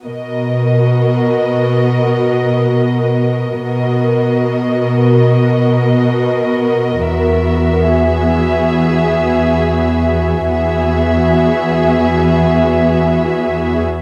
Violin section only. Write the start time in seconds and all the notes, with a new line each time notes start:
0.05 A#4 D#5
3.62 A#4 D#5
7.06 E5
7.91 G#4
10.49 G#4 E5